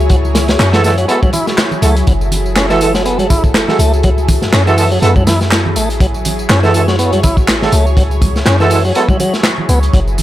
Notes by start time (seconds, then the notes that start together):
Already playing: C#2 F#3 E4 G#4 C#5
0.00 tambourine
0.09 F#3, kick, closed hi-hat, tambourine
0.25 tambourine, muted conga
0.35 snare, closed hi-hat, open hi-hat, tambourine, muted conga, high conga, low conga
0.48 snare, closed hi-hat, tambourine
0.59 F#2 C#4, snare, clap, closed hi-hat, tambourine
0.73 E3 G#3 E4 F#4 A4, snare, closed hi-hat, tambourine
0.84 G#3 E4 F#4 A4, snare, open hi-hat, tambourine
0.98 F#3, closed hi-hat, tambourine
1.08 G#3 B3 E4 F#4 A4, closed hi-hat, tambourine
1.23 F#3, kick, tambourine, high conga
1.33 E4, closed hi-hat, open hi-hat, tambourine, low conga
1.47 snare, tambourine, muted conga
1.57 snare, clap, closed hi-hat, tambourine
1.71 tambourine, low conga
1.82 C#2 G#3 A3 E4 F#4 A4, closed hi-hat, open hi-hat, tambourine
1.96 closed hi-hat, tambourine
2.07 F#1 F#3 A4, kick, closed hi-hat, tambourine
2.21 tambourine
2.32 closed hi-hat, open hi-hat, tambourine, low conga
2.46 tambourine
2.56 C#4, snare, clap, closed hi-hat, tambourine
2.70 E3 G#3 E4 F#4 A4, snare, tambourine
2.80 G#3 E4 F#4 A4, closed hi-hat, open hi-hat, tambourine
2.94 F#3, snare, tambourine
3.05 B3, closed hi-hat, tambourine
3.19 F#3, closed hi-hat, tambourine, high conga
3.30 E4, kick, closed hi-hat, open hi-hat, tambourine, low conga
3.44 kick, tambourine
3.54 snare, clap, closed hi-hat, tambourine
3.68 G#3 E4 F#4 A4, snare, low conga
3.79 C#2 A3, closed hi-hat, open hi-hat, tambourine, muted conga
3.93 tambourine
4.03 F#3, kick, closed hi-hat, tambourine
4.18 tambourine, muted conga
4.28 kick, closed hi-hat, open hi-hat, tambourine, low conga
4.42 F#2, snare, tambourine
4.53 F#2 C#4, snare, clap, closed hi-hat, tambourine
4.66 E3 G#3 E4 F#4 A4, snare, tambourine
4.77 G#3 E4 F#4 A4, open hi-hat, tambourine
4.92 F#3, tambourine
5.02 F#2 G#3 B3 E4 F#4 A4, closed hi-hat, tambourine
5.16 F#3, kick, tambourine, high conga
5.27 E4, snare, closed hi-hat, open hi-hat, tambourine, low conga
5.41 snare, tambourine
5.51 snare, clap, closed hi-hat, tambourine
5.66 low conga
5.76 A1 A3, closed hi-hat, open hi-hat, tambourine
5.90 closed hi-hat, tambourine
6.00 F#3 C#5, kick, closed hi-hat, tambourine
6.14 tambourine
6.25 closed hi-hat, open hi-hat, tambourine, low conga
6.39 tambourine
6.49 F#2 C#4, snare, clap, closed hi-hat, tambourine
6.63 E3 G#3 E4 F#4 A4, snare, tambourine
6.74 G#3 E4 F#4 A4, closed hi-hat, open hi-hat, tambourine
6.88 F#3, snare, tambourine
6.99 B3, closed hi-hat, tambourine
7.12 F#3, closed hi-hat, tambourine, high conga
7.23 A1 E4, kick, closed hi-hat, open hi-hat, tambourine, low conga
7.37 kick, tambourine
7.48 snare, clap, closed hi-hat, tambourine
7.62 G#3 E4 F#4 A4, snare, low conga
7.72 C#2 A3, closed hi-hat, open hi-hat, tambourine
7.87 tambourine
7.97 F#3, kick, closed hi-hat, tambourine
8.11 tambourine, muted conga
8.21 kick, closed hi-hat, open hi-hat, tambourine, high conga, low conga
8.36 snare, tambourine
8.46 F#2 C#4, snare, clap, closed hi-hat, tambourine
8.60 E3 G#3 E4 F#4 A4, snare, tambourine
8.70 G#3 E4 F#4 A4, open hi-hat, tambourine
8.85 F#3, tambourine
8.95 G#3 B3 E4 F#4 A4, closed hi-hat, tambourine
9.09 F#3, kick, tambourine, high conga
9.19 F#3, closed hi-hat, open hi-hat, tambourine, low conga
9.34 snare, tambourine
9.43 snare, clap, closed hi-hat, tambourine
9.58 low conga
9.69 C#2 B3, closed hi-hat, open hi-hat, tambourine
9.83 closed hi-hat, tambourine
9.93 F#1 F#3 A4, kick, closed hi-hat, tambourine
10.07 tambourine
10.18 closed hi-hat, open hi-hat, tambourine, low conga